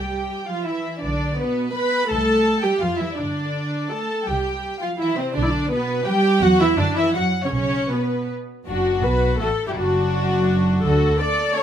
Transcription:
Already playing: C2 G3 G4 G5
0.47 F3 F4 F5
0.64 E3 E4 E5
1.01 B1 D3 D4 D5
1.38 B2 B3 B4
1.75 B3 B4 B5
2.10 C2 A3 A4 A5
2.62 G3 G4 G5
2.79 F2 F3 F4 F5
2.97 E3 E4 E5
3.16 G2 D3 D4 D5
3.90 A3 A4 A5
4.27 C2 G3 G4 G5
4.81 F3 F4 F5
4.99 E3 E4 E5
5.17 C3 C4 C5
5.35 B1 D3 D4 D5
5.43 E4
5.51 D4
5.71 B2 B3 B4
6.06 G3 G4 G5
6.42 E2 F#3 F#4 F#5
6.60 E3 E4 E5
6.78 F#2 D3 D4 D5
6.96 E3 E4 E5
7.15 F#2 F#3 F#4 F#5
7.44 C#3 C#4 C#5
7.52 B1 C#3 C#4 C#5
7.57 C#5
7.90 B2 B3 B4
8.67 F#1 F#2 D4 F#4
9.03 B1 B2 B3 F#4 B4
9.39 A1 A2 A3 F#4 A4
9.65 G2 G3 E4 G4
9.74 F#1 F#2 D4 F#4
10.83 D2 D3 F#4 A4
11.18 A3 D4 A4 D5
11.54 A3 D4 A4 C#5

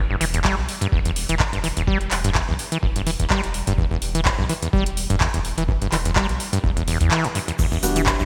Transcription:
Already playing: E1
0.10 G2
0.21 E1 E3, open hi-hat
0.34 E2, closed hi-hat
0.44 G3, kick, clap
0.58 B1
0.69 open hi-hat
0.81 G2, closed hi-hat
0.92 E1 E2, kick
1.05 E2, closed hi-hat
1.16 open hi-hat
1.29 E1 E3, closed hi-hat
1.40 F#2, kick, clap
1.53 E1 G2, closed hi-hat
1.64 E3, open hi-hat
1.77 E1 E2, closed hi-hat
1.87 G3, kick
2.01 closed hi-hat
2.11 E1, clap, open hi-hat
2.24 G2, closed hi-hat
2.35 E2, kick, clap
2.48 B1 E2
2.59 open hi-hat
2.72 E3, closed hi-hat
2.83 E1 F#2, kick
2.96 G2, closed hi-hat
3.07 E3, open hi-hat
3.20 E1 E2, kick, closed hi-hat
3.30 G3, kick, clap
3.43 E1, closed hi-hat
3.54 open hi-hat
3.67 E1 G2, closed hi-hat
3.78 E2, kick
3.91 E2
4.02 E1, open hi-hat
4.15 E3, closed hi-hat
4.25 F#2, kick, clap
4.39 B1 G2
4.49 E3, open hi-hat
4.62 E2, closed hi-hat
4.73 E1 G3, kick
4.86 closed hi-hat
4.97 open hi-hat
5.10 E1 G2, closed hi-hat
5.21 E2, kick, clap
5.34 E1 E2, closed hi-hat
5.45 open hi-hat
5.58 E1 E3, closed hi-hat
5.68 F#2, kick
5.81 G2, closed hi-hat
5.92 E1 E3, clap, open hi-hat
6.05 E2, closed hi-hat
6.16 G3, kick, clap
6.29 B1, closed hi-hat
6.40 open hi-hat
6.53 G2, closed hi-hat
6.64 E1 E2, kick
6.77 E2, closed hi-hat
6.88 E2, open hi-hat
7.01 E2, kick, closed hi-hat
7.11 E3, clap
7.24 F#2, closed hi-hat
7.35 G2, open hi-hat
7.48 E2, closed hi-hat
7.59 E2 E3 D4 G4 E5, kick, crash, shaker
7.72 E2, shaker
7.83 E1 G3 B3 D4 F#4, open hi-hat, shaker
7.96 E3, closed hi-hat, shaker
8.06 F#2, kick, clap, shaker
8.20 B1 G2, shaker

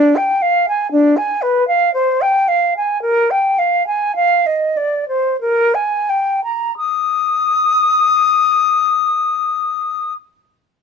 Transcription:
Already playing: D4
0.16 G5
0.42 F5
0.69 G#5
0.92 D4
1.17 G#5
1.42 B4
1.68 F5
1.94 C5
2.21 G5
2.48 F5
2.77 G#5
3.02 A#4
3.31 G5
3.59 F5
3.87 G#5
4.16 F5
4.46 D#5
4.77 D5
5.08 C5
5.41 A#4
5.75 G#5
6.09 G5
6.44 A#5
6.77 D#6

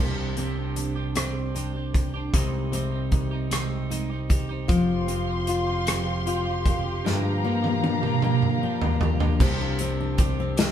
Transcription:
Already playing: C2 C3 D4 G4
0.00 G3 C4 D4 G4
0.36 G3 C4 D4 G4, closed hi-hat
0.56 C4 D4 G4
0.76 D4, closed hi-hat
0.96 C4 D4 G4
1.16 C3 G3 C4 D4 G4, cross-stick, closed hi-hat
1.54 G3 C4 D4 G4, closed hi-hat
1.74 C4 D4 G4
1.94 G4, kick, closed hi-hat
2.14 C4 D4 G4
2.33 C2 C3 G#3 C4 D#4 G4, kick, closed hi-hat
2.72 G#3 C4 D#4 G4, closed hi-hat
2.92 C4 D#4 G4
3.12 D#4, kick, closed hi-hat
3.31 C4 D#4 G4
3.51 C3 G#3 C4 D#4 G4, cross-stick, closed hi-hat
3.90 G#3 C4 D#4 G4, closed hi-hat
4.10 C4 D#4 G4
4.29 G4, kick, closed hi-hat
4.49 C4 D#4 G4
4.69 F1 F3 C4 F4 G4 F5 C6, kick, closed hi-hat
5.08 F3 C4 F4 G4, closed hi-hat
5.27 C4 F4 G4
5.47 F4, closed hi-hat
5.67 C4 F4 G4
5.87 F3 C4 F4 G4, cross-stick, closed hi-hat
6.26 F3 C4 F4 G4, closed hi-hat
6.45 C4 F4 G4
6.66 G4, kick, closed hi-hat
6.84 C4 F4 G4
7.04 G2 D3 F3 A#3 D4 G4 F5 A#5, snare
7.43 F3 A#3 D4 G4
7.62 F3 A#3 D4 G4, high tom
7.84 D4, high tom
8.02 F3 A#3 D4 G4, mid tom
8.21 G2 D3 F3 A#3 D4 G4, mid tom
8.42 mid tom
8.61 F3 A#3 D4 G4
8.81 F3 A#3 D4 G4, floor tom
9.01 G4, floor tom
9.19 F3 A#3 D4 G4, floor tom
9.39 C2 C3 G3 C4 D4 G4, kick, crash
9.61 D4
9.78 C4 D4 G4, closed hi-hat
10.00 D4
10.17 G3 C4 D4 G4, kick, closed hi-hat
10.40 C4
10.57 C3 G3 C4 D4 G4, snare, closed hi-hat

